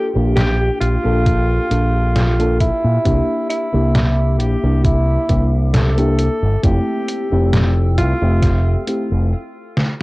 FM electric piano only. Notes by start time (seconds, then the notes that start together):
Already playing: F4 A4
0.15 A#3 D4 F4 G4
1.04 A#3 D4 F4 A4
1.70 A#3 D4 F4 A4
2.39 A#3 D4 F4 A4
3.05 A#3 D4 E4 G4
3.73 A#3 D4 E4 G4
4.63 A#3 D4 E4 G4
5.29 A#3 D4 E4 G4
5.97 A#3 D4 E4 G4
6.63 A3 C4 E4 G4
7.32 A3 C4 E4 G4
8.22 A3 C4 G4 E5
8.87 A3 C4 E4 G4